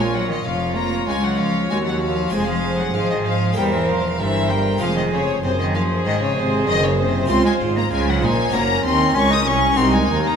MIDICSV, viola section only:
0, 0, Header, 1, 2, 480
1, 0, Start_track
1, 0, Key_signature, -5, "minor"
1, 0, Tempo, 621118
1, 1798, Time_signature, 4, 2, 24, 8
1, 8006, End_track
2, 0, Start_track
2, 0, Title_t, "Viola section"
2, 0, Program_c, 0, 48
2, 0, Note_on_c, 0, 65, 76
2, 346, Note_off_c, 0, 65, 0
2, 358, Note_on_c, 0, 65, 81
2, 1299, Note_off_c, 0, 65, 0
2, 1322, Note_on_c, 0, 66, 76
2, 1801, Note_off_c, 0, 66, 0
2, 1801, Note_on_c, 0, 68, 82
2, 2266, Note_off_c, 0, 68, 0
2, 2275, Note_on_c, 0, 68, 81
2, 2747, Note_off_c, 0, 68, 0
2, 2759, Note_on_c, 0, 70, 88
2, 3232, Note_off_c, 0, 70, 0
2, 3241, Note_on_c, 0, 70, 77
2, 3711, Note_off_c, 0, 70, 0
2, 3720, Note_on_c, 0, 68, 82
2, 4194, Note_off_c, 0, 68, 0
2, 4203, Note_on_c, 0, 68, 100
2, 5610, Note_off_c, 0, 68, 0
2, 5639, Note_on_c, 0, 65, 85
2, 6087, Note_off_c, 0, 65, 0
2, 6118, Note_on_c, 0, 65, 83
2, 6352, Note_off_c, 0, 65, 0
2, 6357, Note_on_c, 0, 63, 82
2, 6596, Note_off_c, 0, 63, 0
2, 6597, Note_on_c, 0, 61, 90
2, 7068, Note_off_c, 0, 61, 0
2, 7077, Note_on_c, 0, 61, 92
2, 7545, Note_off_c, 0, 61, 0
2, 7553, Note_on_c, 0, 63, 105
2, 8006, Note_off_c, 0, 63, 0
2, 8006, End_track
0, 0, End_of_file